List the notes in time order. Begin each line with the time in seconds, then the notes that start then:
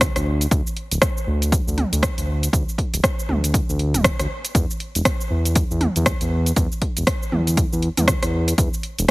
0.01 kick, cross-stick, closed hi-hat, shaker
0.16 D2, cross-stick, closed hi-hat, shaker
0.41 closed hi-hat, shaker
0.51 D2, kick, closed hi-hat, shaker
0.67 shaker
0.77 closed hi-hat
0.91 D1, closed hi-hat, shaker
1.02 kick, cross-stick, closed hi-hat, shaker
1.17 shaker
1.27 D2
1.42 closed hi-hat, shaker
1.52 kick, closed hi-hat, shaker
1.67 D2, shaker
1.78 closed hi-hat, mid tom
1.92 D2, closed hi-hat, shaker
2.03 kick, cross-stick, closed hi-hat, shaker
2.18 D2, closed hi-hat, shaker
2.43 closed hi-hat, shaker
2.53 D2, kick, closed hi-hat, shaker
2.69 shaker
2.78 kick, closed hi-hat
2.93 D1, closed hi-hat, shaker
3.04 kick, cross-stick, closed hi-hat, shaker
3.19 shaker
3.29 D2, mid tom
3.44 closed hi-hat, shaker
3.54 kick, closed hi-hat, shaker
3.69 D2, shaker
3.79 closed hi-hat
3.94 D1, closed hi-hat, mid tom, shaker
4.04 kick, cross-stick, closed hi-hat, shaker
4.19 D2, cross-stick, closed hi-hat, shaker
4.45 closed hi-hat, shaker
4.55 E2, kick, closed hi-hat, shaker
4.71 shaker
4.80 closed hi-hat
4.95 E1, closed hi-hat, shaker
5.05 kick, cross-stick, closed hi-hat, shaker
5.21 shaker
5.30 E2
5.45 closed hi-hat, shaker
5.55 kick, closed hi-hat, shaker
5.71 E2, shaker
5.81 closed hi-hat, mid tom
5.96 E2, closed hi-hat, shaker
6.06 kick, cross-stick, closed hi-hat, shaker
6.21 E2, closed hi-hat, shaker
6.46 closed hi-hat, shaker
6.56 E2, kick, closed hi-hat, shaker
6.72 shaker
6.82 kick, closed hi-hat
6.97 E1, closed hi-hat, shaker
7.07 kick, cross-stick, closed hi-hat, shaker
7.23 shaker
7.32 E2, mid tom
7.47 closed hi-hat, shaker
7.57 kick, closed hi-hat, shaker
7.72 E2, shaker
7.82 closed hi-hat
7.97 E2, closed hi-hat, mid tom, shaker
8.08 kick, cross-stick, closed hi-hat, shaker
8.23 E2, cross-stick, closed hi-hat, shaker
8.48 closed hi-hat, shaker
8.58 E2, kick, closed hi-hat, shaker
8.74 shaker
8.83 closed hi-hat
8.98 E1, closed hi-hat, shaker